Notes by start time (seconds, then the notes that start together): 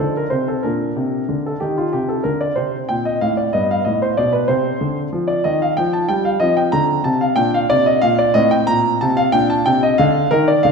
Already playing: D#4
0.00 D3 A4
0.17 A#4
0.30 C3 C5
0.48 A4
0.63 A#2 D4 A#4
0.96 C3
1.29 D3
1.46 A4
1.60 D#3 G4
1.78 F4
1.93 C3 G4
2.09 A4
2.24 D3 A#4
2.41 D5
2.56 C3 C4 C5
2.89 A#2 G5
3.05 D#5
3.21 A2 F5
3.37 D5
3.53 G2 B3 D#5
3.71 F5
3.85 A2 D#5
4.02 C5
4.17 B2 D5
4.33 B4
4.48 C3 C4 C5
4.81 D3
5.13 F3
5.28 D5
5.44 D#3 D#5
5.62 F5
5.77 F3 G5
5.93 A5
6.09 G3 G5
6.25 F5
6.40 F3 C4 D#5
6.57 G5
6.72 D3 A#5
7.04 C3 A5
7.21 F5
7.36 A#2 D4 G5
7.54 F5
7.70 C3 D5
7.86 D#5
8.02 A#2 F5
8.19 D5
8.34 A2 C4 D#5
8.51 G5
8.67 A#2 A#5
9.01 C3 A5
9.17 F5
9.32 A#2 D4 G5
9.50 A5
9.66 C3 G5
9.83 D#5
9.98 D3 F5
10.31 D#3 D#4 A#4
10.48 D5
10.63 D3 F5